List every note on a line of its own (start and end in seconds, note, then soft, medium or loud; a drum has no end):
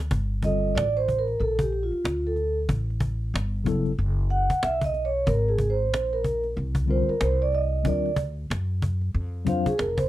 0.11 0.73 G1 loud
0.11 cajon bass loud
0.42 0.83 D3 medium
0.42 0.83 G3 medium
0.42 0.84 C4 soft
0.42 0.84 F4 medium
0.42 0.74 D#5 loud
0.42 cajon bass medium
0.46 0.85 A4 medium
0.75 1.37 A1 loud
0.75 0.95 D5 loud
0.75 cajon slap loud
0.97 1.19 C5 loud
1.08 cajon bass medium
1.19 1.41 A#4 medium
1.28 cajon slap soft
1.40 1.89 A#1 medium
1.40 1.60 A4 loud
1.40 cajon slap soft
1.59 1.81 G4 medium
1.59 cajon bass medium
1.72 cajon slap soft
1.83 2.27 F4 medium
1.92 muted upright bass stroke soft
2.04 2.66 D2 medium
2.04 cajon slap loud
2.27 2.57 A4 medium
2.36 cajon slap soft
2.69 3.30 A1 medium
2.69 cajon bass loud
2.90 cajon slap soft
3.00 cajon bass loud
3.34 3.95 G1 medium
3.34 cajon slap loud
3.64 3.89 C#3 medium
3.64 3.90 F#3 medium
3.64 3.90 B3 medium
3.64 3.91 E4 medium
3.64 cajon bass medium
3.68 3.92 A4 medium
3.85 cajon slap soft
3.99 4.47 F#1 loud
3.99 cajon slap soft
4.30 4.64 F#5 loud
4.30 cajon slap soft
4.50 muted upright bass stroke soft
4.50 cajon bass medium
4.63 5.24 B1 medium
4.63 4.73 E5 loud
4.63 cajon slap loud
4.81 5.06 D#5 loud
4.81 cajon bass medium
4.94 cajon slap soft
5.05 5.28 C#5 medium
5.26 5.92 G#1 loud
5.26 5.49 A#4 loud
5.26 cajon bass loud
5.49 5.71 G#4 medium
5.58 cajon bass medium
5.70 6.14 C5 medium
5.92 6.53 A#1 loud
5.92 cajon slap loud
6.13 6.43 A#4 medium
6.24 cajon bass medium
6.44 cajon slap soft
6.56 7.05 C2 medium
6.56 cajon slap medium
6.75 cajon bass loud
6.86 7.12 D3 medium
6.86 7.12 G3 medium
6.86 7.13 C4 medium
6.86 7.13 F4 medium
6.86 cajon slap soft
6.90 7.14 A#4 medium
6.90 7.08 C5 medium
7.08 7.22 A#4 medium
7.08 muted upright bass stroke medium
7.21 7.82 C2 loud
7.21 7.41 C5 medium
7.21 cajon slap loud
7.42 7.54 D5 loud
7.52 7.87 D#5 loud
7.52 cajon slap soft
7.83 8.46 D2 medium
7.83 8.09 F#3 medium
7.83 8.09 C4 medium
7.83 8.10 D4 medium
7.83 8.10 F4 medium
7.83 8.16 D5 medium
7.83 cajon bass loud
7.87 8.11 A#4 medium
8.06 cajon slap soft
8.16 cajon bass loud
8.50 9.11 F#2 loud
8.50 cajon slap loud
8.82 cajon bass medium
9.01 cajon slap soft
9.14 9.63 F2 loud
9.14 cajon slap soft
9.45 9.70 F#3 medium
9.45 9.71 C4 medium
9.45 9.71 D4 medium
9.45 9.72 F4 medium
9.45 9.65 F5 medium
9.45 cajon bass medium
9.49 9.72 C5 medium
9.66 9.78 G#4 medium
9.66 muted upright bass stroke medium
9.66 cajon bass medium
9.78 10.09 F1 medium
9.78 9.98 A#4 medium
9.78 cajon slap loud
9.97 10.09 C5 medium
9.97 cajon bass loud